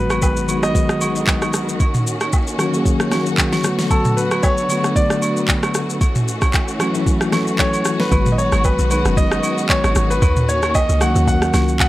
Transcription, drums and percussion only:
0.10 cross-stick medium
0.10 high agogo medium
0.10 shaker soft
0.22 kick medium
0.22 low woodblock medium
0.22 shaker medium
0.37 shaker medium
0.49 high agogo medium
0.49 shaker medium
0.63 cross-stick medium
0.63 shaker medium
0.75 kick loud
0.75 shaker medium
0.89 cross-stick loud
0.89 shaker soft
1.01 high agogo medium
1.01 shaker medium
1.16 shaker soft
1.27 kick medium
1.27 clap loud
1.27 low woodblock medium
1.27 shaker medium
1.42 cross-stick medium
1.42 high agogo medium
1.42 shaker medium
1.53 cross-stick medium
1.53 shaker loud
1.69 shaker medium
1.80 kick loud
1.80 high agogo medium
1.80 shaker medium
1.94 mid tom loud
1.94 shaker medium
2.07 shaker loud
2.21 cross-stick medium
2.21 high agogo medium
2.21 shaker soft
2.33 kick loud
2.33 low woodblock medium
2.33 shaker medium
2.47 shaker medium
2.59 cross-stick medium
2.59 high agogo medium
2.59 shaker medium
2.74 shaker soft
2.86 kick loud
2.86 shaker medium
3.00 cross-stick loud
3.00 shaker soft
3.12 cross-stick medium
3.12 snare medium
3.12 high agogo medium
3.12 shaker medium
3.26 shaker soft
3.38 kick medium
3.38 clap loud
3.38 low woodblock medium
3.38 shaker medium
3.52 snare medium
3.52 high agogo medium
3.52 shaker medium
3.64 cross-stick loud
3.64 shaker loud
3.79 snare medium
3.79 shaker medium
3.91 kick loud
3.91 high agogo medium
3.91 shaker medium
4.05 mid tom loud
4.05 shaker medium
4.18 shaker loud
4.31 cross-stick medium
4.31 high agogo medium
4.31 shaker soft
4.43 kick loud
4.43 low woodblock medium
4.43 shaker medium
4.58 shaker medium
4.70 high agogo medium
4.70 shaker medium
4.84 cross-stick medium
4.84 shaker medium
4.96 kick loud
4.96 shaker medium
5.10 cross-stick loud
5.10 shaker soft
5.22 high agogo medium
5.22 shaker medium
5.37 shaker soft
5.48 kick medium
5.48 clap loud
5.48 low woodblock medium
5.48 shaker medium
5.63 cross-stick loud
5.63 high agogo medium
5.63 shaker medium
5.74 cross-stick medium
5.74 shaker loud
5.90 shaker medium
6.01 kick loud
6.01 high agogo medium
6.01 shaker medium
6.15 mid tom medium
6.15 shaker medium
6.28 shaker loud
6.42 kick medium
6.42 cross-stick medium
6.42 high agogo medium
6.42 shaker soft
6.54 kick loud
6.54 clap medium
6.54 low woodblock medium
6.54 shaker medium
6.68 shaker medium
6.80 cross-stick medium
6.80 high agogo medium
6.80 shaker medium
6.95 shaker medium
7.06 kick loud
7.06 shaker medium
7.21 cross-stick loud
7.21 shaker soft
7.32 cross-stick medium
7.32 snare medium
7.32 high agogo medium
7.32 shaker medium
7.47 shaker soft
7.59 kick medium
7.59 clap loud
7.59 low woodblock medium
7.59 shaker medium
7.73 high agogo medium
7.73 shaker medium
7.85 cross-stick loud
7.85 shaker loud
8.00 snare medium
8.11 kick loud
8.11 high agogo medium
8.11 shaker medium
8.26 mid tom loud
8.26 shaker medium
8.39 shaker loud
8.52 cross-stick medium
8.52 high agogo medium
8.52 shaker soft
8.64 kick medium
8.64 low woodblock medium
8.64 shaker medium
8.79 shaker medium
8.91 high agogo medium
8.91 shaker medium
9.05 cross-stick medium
9.05 shaker medium
9.17 kick loud
9.17 shaker medium
9.31 cross-stick loud
9.31 shaker soft
9.43 high agogo medium
9.43 shaker medium
9.58 shaker soft
9.69 kick medium
9.69 clap loud
9.69 low woodblock medium
9.69 shaker medium
9.84 cross-stick loud
9.84 high agogo medium
9.84 shaker medium
9.95 cross-stick medium
9.95 shaker loud
10.11 shaker medium
10.22 kick loud
10.22 high agogo medium
10.22 shaker medium
10.36 mid tom loud
10.36 shaker medium
10.49 shaker loud
10.63 cross-stick medium
10.63 high agogo medium
10.63 shaker soft
10.75 kick medium
10.75 low woodblock medium
10.75 shaker medium
10.89 shaker medium
11.01 cross-stick medium
11.01 high agogo medium
11.01 shaker medium
11.16 shaker medium
11.28 kick loud
11.28 shaker medium
11.42 cross-stick loud
11.42 shaker soft
11.54 cross-stick medium
11.54 snare medium
11.54 high agogo medium
11.54 shaker medium
11.68 shaker soft
11.80 kick medium
11.80 clap loud
11.80 low woodblock medium
11.80 shaker medium

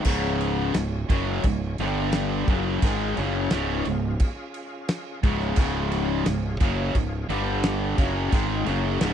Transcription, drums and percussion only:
0.05 kick loud
0.05 crash loud
0.05 crash medium
0.41 crash medium
0.74 snare medium
0.74 crash medium
1.10 kick loud
1.10 crash medium
1.43 kick medium
1.43 crash medium
1.78 crash medium
2.12 snare loud
2.12 crash medium
2.48 kick loud
2.48 crash medium
2.82 kick loud
2.82 crash medium
3.17 crash medium
3.50 snare loud
3.50 crash medium
3.85 crash medium
4.20 kick loud
4.20 crash medium
4.54 crash medium
4.88 snare loud
4.88 crash medium
5.23 kick loud
5.23 crash medium
5.40 snare soft
5.56 kick loud
5.56 crash loud
5.92 snare soft
5.92 crash medium
6.26 snare loud
6.26 crash medium
6.60 kick loud
6.60 crash medium
6.95 kick medium
6.95 crash medium
7.30 crash medium
7.63 snare loud
7.63 crash medium
7.98 kick loud
7.98 crash medium
8.32 kick loud
8.32 crash medium
8.66 snare soft
8.66 crash medium
9.01 snare loud
9.01 crash medium

